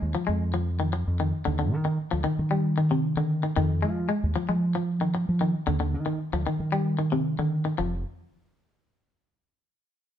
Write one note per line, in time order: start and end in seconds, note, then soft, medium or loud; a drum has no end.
0.00 0.14 D#2 medium
0.00 0.11 G#3 medium
0.15 0.26 F3 medium
0.27 1.03 F2 medium
0.27 0.50 G#3 medium
0.54 0.77 F3 medium
0.80 0.92 D#3 medium
0.93 muted clean electric guitar stroke medium
1.08 1.31 F2 medium
1.20 1.43 D#3 medium
1.45 1.73 D#2 loud
1.45 1.57 D3 medium
1.59 1.82 D3 medium
1.73 1.97 D#3 loud
1.85 2.08 D#3 medium
2.11 2.24 D2 medium
2.11 2.23 F3 medium
2.24 2.48 D#3 medium
2.39 3.14 D#3 medium
2.51 2.74 G3 medium
2.78 2.89 D#3 medium
2.91 3.14 C3 medium
3.17 3.41 D3 medium
3.17 3.41 D#3 medium
3.43 3.55 D#3 medium
3.56 3.85 F2 loud
3.56 3.80 D#3 medium
3.82 4.08 F3 medium
3.82 4.06 G#3 medium
4.09 4.32 G#3 medium
4.23 4.35 D#2 medium
4.36 4.47 F3 medium
4.49 5.24 F3 medium
4.49 4.72 G#3 medium
4.75 4.98 F3 medium
5.01 5.13 D#3 medium
5.15 muted clean electric guitar stroke medium
5.29 5.53 F3 medium
5.41 5.64 D#3 medium
5.67 5.95 D#2 loud
5.67 5.79 D3 medium
5.80 6.03 D3 medium
5.93 6.18 D#3 medium
6.06 6.30 D#3 medium
6.33 6.45 D2 medium
6.33 6.45 F3 medium
6.47 6.70 D#3 medium
6.60 7.35 D#3 medium
6.72 6.96 G3 medium
6.99 7.10 D#3 medium
7.12 7.35 C3 medium
7.39 7.62 D3 medium
7.39 7.63 D#3 medium
7.65 7.76 D#3 medium
7.78 8.03 F1 medium
7.78 7.94 F3 medium